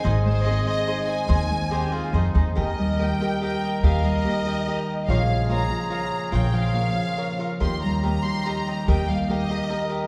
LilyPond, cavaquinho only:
\new Staff \with { instrumentName = "Cavaquinho" } { \time 3/4 \key ees \mixolydian \tempo 4 = 144 <ees' aes' c'' ees''>8 r8 <ees' aes' c'' ees''>8 <ees' aes' c'' ees''>8 <ees' aes' c'' ees''>8 <ees' aes' c'' ees''>8 | <ees' aes' c'' ees''>8 r8 <ees' aes' c'' ees''>8 <ees' aes' c'' ees''>8 <ees' aes' c'' ees''>8 <ees' aes' c'' ees''>8 | <g' bes' ees'' g''>8 r8 <g' bes' ees'' g''>8 <g' bes' ees'' g''>8 <g' bes' ees'' g''>8 <g' bes' ees'' g''>8 | <g' bes' ees'' g''>8 r8 <g' bes' ees'' g''>8 <g' bes' ees'' g''>8 <g' bes' ees'' g''>8 r8 |
<f' bes' des'' f''>8 r8 <f' bes' des'' f''>8 r8 <f' bes' des'' f''>8 r8 | <f' bes' des'' f''>8 r8 <f' bes' des'' f''>8 r8 <f' bes' des'' f''>8 <f' bes' des'' f''>8 | <g' bes' ees'' g''>8 r8 <g' bes' ees'' g''>8 r8 <g' bes' ees'' g''>8 <g' bes' ees'' g''>8 | <g' bes' ees'' g''>8 r8 <g' bes' ees'' g''>8 <g' bes' ees'' g''>8 <g' bes' ees'' g''>8 <g' bes' ees'' g''>8 | }